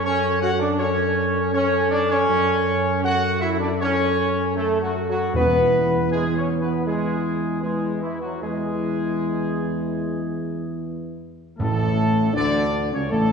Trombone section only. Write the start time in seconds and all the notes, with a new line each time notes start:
0.06 C#4
0.42 F#4
0.60 D4
0.80 C#4
1.54 C#4
1.91 D4
2.11 C#4
3.03 F#4
3.41 E4
3.60 D4
3.82 C#4
4.56 A3
4.81 F#3
5.08 F#3
5.36 B3
6.12 G#3
6.37 C#4
6.62 B3
6.86 G#3
7.63 G#3
8.02 E3
8.23 F#3
8.43 G#3
11.59 A2
12.36 D3
12.93 C#3
13.11 A2